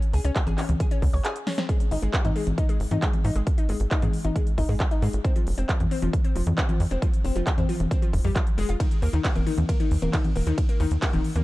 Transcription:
0.02 closed hi-hat
0.13 C#2 G#4, open hi-hat
0.24 C#2 C#4, closed hi-hat
0.36 kick, clap, closed hi-hat
0.47 G#1 G#4, closed hi-hat, high conga
0.58 C#4, clap, open hi-hat
0.69 C#2, closed hi-hat, high conga
0.80 G#4, kick, closed hi-hat
0.91 C#4, closed hi-hat
1.02 C#2, kick, open hi-hat
1.13 C#2 C#5, open hi-hat
1.25 G#4, clap, closed hi-hat
1.36 closed hi-hat
1.47 C#4, snare, open hi-hat
1.58 C4, snare, closed hi-hat
1.69 G#3, kick, closed hi-hat
1.80 closed hi-hat
1.91 G#1 D#4, open hi-hat
2.02 G#1 G#3, closed hi-hat
2.13 kick, clap, closed hi-hat
2.25 G#2 D#4, closed hi-hat, high conga
2.36 G#3, open hi-hat
2.47 G#1, closed hi-hat, high conga
2.58 D#4, kick, closed hi-hat
2.69 G#3, closed hi-hat
2.80 G#1, open hi-hat
2.91 G#2 D#4, closed hi-hat, high conga
3.02 G#3, kick, clap, closed hi-hat
3.13 closed hi-hat, high conga
3.24 G#2 D#4, open hi-hat
3.35 G#1 G#3, closed hi-hat
3.47 kick, closed hi-hat
3.58 D#4, closed hi-hat
3.69 G#1 G#3, open hi-hat
3.80 G#1, closed hi-hat
3.91 D#4, kick, clap, closed hi-hat
4.02 G#2 G#3, closed hi-hat, high conga
4.13 open hi-hat
4.25 G#1 D#4, closed hi-hat, high conga
4.36 G#3, kick, closed hi-hat
4.47 closed hi-hat
4.58 G#1 D#4, kick, open hi-hat
4.69 G#2 G#3, open hi-hat
4.80 kick, clap, closed hi-hat
4.91 D#4, closed hi-hat
5.02 G#2 G#3, open hi-hat
5.13 G#1, closed hi-hat
5.25 C4, kick, closed hi-hat
5.36 F3, closed hi-hat
5.47 F1, open hi-hat
5.58 F1 C4, closed hi-hat
5.69 F3, kick, clap, closed hi-hat
5.80 F2, closed hi-hat, high conga
5.91 C4, open hi-hat
6.02 F1 F3, closed hi-hat, high conga
6.13 kick, closed hi-hat
6.24 C4, closed hi-hat
6.35 F1 F3, open hi-hat
6.47 F2, closed hi-hat, high conga
6.58 C4, kick, clap, closed hi-hat
6.69 F3, closed hi-hat, high conga
6.80 F2, open hi-hat
6.91 F1 C4, closed hi-hat
7.02 F3, kick, closed hi-hat
7.14 closed hi-hat
7.24 F1 C4, open hi-hat
7.36 F1 F3, closed hi-hat
7.47 kick, clap, closed hi-hat
7.58 F2 C4, closed hi-hat, high conga
7.69 F3, open hi-hat
7.80 F1, closed hi-hat, high conga
7.91 C4, kick, closed hi-hat
8.02 F3, closed hi-hat
8.13 F1, kick, open hi-hat
8.24 F2 G3
8.35 F3, kick, clap, closed hi-hat
8.47 closed hi-hat
8.58 F1 G#3, open hi-hat
8.69 F1 F4, closed hi-hat
8.80 D#3, kick, closed hi-hat, ride
8.91 closed hi-hat
9.02 D#2 A#3, open hi-hat
9.13 D#2 D#3, closed hi-hat
9.24 kick, clap, closed hi-hat, ride
9.35 D#1 A#3, closed hi-hat, high conga
9.47 D#3, open hi-hat
9.58 D#2, closed hi-hat, high conga
9.69 A#3, kick, closed hi-hat, ride
9.80 D#3, closed hi-hat
9.91 D#2, open hi-hat
10.02 D#1 A#3, closed hi-hat, high conga
10.13 D#3, kick, clap, closed hi-hat, ride
10.24 closed hi-hat, high conga
10.36 D#1 A#3, open hi-hat
10.47 D#2 D#3, closed hi-hat
10.58 kick, closed hi-hat, ride
10.69 A#3, closed hi-hat
10.80 D#2 D#3, open hi-hat
10.91 D#2, closed hi-hat
11.02 A#3, kick, clap, closed hi-hat, ride
11.13 D#1 D#3, closed hi-hat, high conga
11.24 open hi-hat
11.36 D#2 A#3, closed hi-hat, high conga

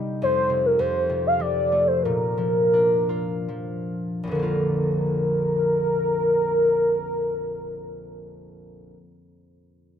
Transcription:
Already playing: C3 G3 A#3 D#4 G4
0.22 F2 C5
0.49 C3
0.66 A#4
0.79 F2 C5
1.09 C3
1.27 F5
1.39 F3 D5
1.72 A3
1.87 C5
2.03 A#2 A#4
2.37 F3
2.73 D4
3.09 F4
3.48 F3
4.23 A#1 F2
4.31 D3 F3 A#4
4.39 A#3 F4

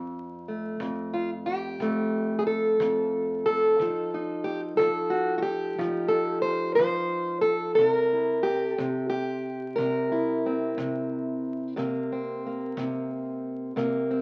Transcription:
Already playing: F2 C4
0.48 A3
0.80 F2, kick
1.14 F4
1.46 G4
1.80 F2 A3, kick
2.39 G#4
2.47 A4
2.80 F2, kick
3.46 A4
3.80 F3 D#4, kick
4.14 D#4
4.44 G4
4.77 F3 A4, kick
5.10 F#4
5.38 F#4
5.42 G4
5.78 F3 D#4, kick
6.08 A4
6.42 C5
6.75 C5, kick
6.79 F3
7.41 A4
7.75 C3 A4, kick
7.89 A#4
8.13 E4
8.43 G4
8.70 A4
8.78 C3, kick
9.10 G4
9.76 C3 A#4, kick
10.12 E4
10.46 C4
10.78 C3, kick
11.76 C3 A#3, kick
12.12 C4
12.46 A#3
12.77 C3, kick
13.76 C3 A#3, kick
14.11 C4

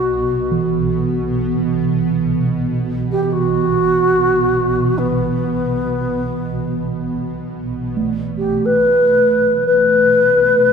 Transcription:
Already playing: B1 B2 F#4
0.51 E3
3.11 G4
3.23 G4
3.32 F#4
4.98 B3
7.66 B1 B2
7.97 A3
8.38 G4
8.66 B4
9.67 B4

